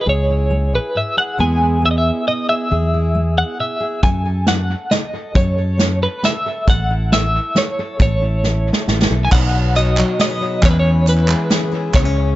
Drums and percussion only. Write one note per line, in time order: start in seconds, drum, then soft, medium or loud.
4.03 kick medium
4.03 closed hi-hat soft
4.47 snare medium
4.47 closed hi-hat soft
4.91 snare medium
4.91 closed hi-hat soft
5.35 kick medium
5.35 closed hi-hat medium
5.79 snare medium
5.79 closed hi-hat medium
6.24 snare medium
6.24 closed hi-hat medium
6.67 kick loud
6.67 closed hi-hat medium
7.12 snare medium
7.12 closed hi-hat medium
7.56 snare medium
7.56 closed hi-hat medium
7.99 kick loud
7.99 closed hi-hat soft
8.44 snare soft
8.73 snare medium
8.88 snare medium
9.02 snare medium
9.32 kick loud
9.32 clap medium
9.32 crash loud
9.76 clap soft
9.76 closed hi-hat medium
9.86 clap soft
9.97 clap medium
10.19 snare medium
10.19 closed hi-hat medium
10.63 kick loud
10.63 clap medium
10.63 closed hi-hat medium
11.07 clap soft
11.07 closed hi-hat medium
11.18 clap soft
11.28 clap medium
11.50 snare medium
11.50 closed hi-hat medium
11.94 kick loud
11.94 clap medium
11.94 closed hi-hat medium